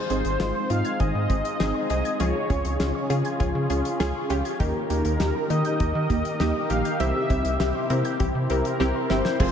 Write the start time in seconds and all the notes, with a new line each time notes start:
Already playing: G#3 C4 D#4 C5
0.10 G#1 C4 D#4 G#4, closed hi-hat
0.25 G#1, closed hi-hat
0.40 G#1 C4 D#4 F4 G#4, snare, closed hi-hat
0.55 C6
0.70 G#2 C4 D#4 F4 D#5 F5, closed hi-hat
0.85 G#6, closed hi-hat
1.00 G#1 D#3 C4 D#4 G#4 D#5, kick, closed hi-hat
1.15 G#2
1.30 G#1 C4 D#4 G#4, kick, closed hi-hat
1.45 D#5, closed hi-hat
1.60 G#1 C4 D#4 G#4, snare, closed hi-hat
1.75 C6
1.90 C2 C4 D#4 G#4 D#5, closed hi-hat
2.05 G#6, closed hi-hat
2.20 C#2 C#3 F3 C#4 F4 G#4 C#5, closed hi-hat
2.35 G#4
2.50 C#2 C#4 F4 G#4, kick, closed hi-hat
2.65 C#2, closed hi-hat
2.80 C#2 C#4 F4 G#4, snare, closed hi-hat
2.95 C#6
3.10 C#3 C#4 F4 G#4 F5, closed hi-hat
3.25 G#6, closed hi-hat
3.40 C#2 F3 C#4 F4 G#4, kick, closed hi-hat
3.55 C#3
3.70 C#2 C#4 F4 G#4, closed hi-hat
3.85 F5, closed hi-hat
4.00 C#2 C#4 F4 G#4, snare, closed hi-hat
4.15 C#6
4.30 C#2 C#4 F4 G4 F5, closed hi-hat
4.45 G#6, closed hi-hat
4.60 D#2 D#3 A#3 D#4 G4 A#4, kick, closed hi-hat
4.75 G4
4.90 D#2 A#3 D#4 G4, closed hi-hat
5.05 D#2, closed hi-hat
5.20 D#2 A#3 D#4 G4, snare, closed hi-hat
5.35 A#5
5.50 D#3 A#3 D#4 G4 D#5, closed hi-hat
5.65 G6, closed hi-hat
5.80 D#2 D#3 A#3 D#4 G4 D#5, kick, closed hi-hat
5.95 D#3
6.10 D#2 A#3 D#4 G4, kick, closed hi-hat
6.25 D#5, closed hi-hat
6.40 D#2 A#3 D#4 G4, snare, closed hi-hat
6.55 A#5
6.70 A#1 A#3 D#4 G4 D#5 F5, closed hi-hat
6.85 G6, closed hi-hat
7.00 C2 C3 E3 C4 E4 G4 E5, closed hi-hat
7.15 G4
7.30 C2 C4 E4 G4, kick, closed hi-hat
7.45 C2, closed hi-hat
7.60 C2 C4 E4 G4, snare, closed hi-hat
7.75 C6
7.90 C3 C4 E4 A#4 E5, closed hi-hat
8.05 G6, closed hi-hat
8.20 C2 E3 C4 E4 G4, kick, closed hi-hat
8.35 C3
8.50 C2 C4 E4 G4 A#4, closed hi-hat
8.65 E5, closed hi-hat
8.80 C2 C4 E4 G4, snare
8.95 C6
9.10 G1 C4 E4 G4 C5 E5, snare
9.25 G6, snare
9.40 F1 F3 G#3 C4 F4 G#4, kick, crash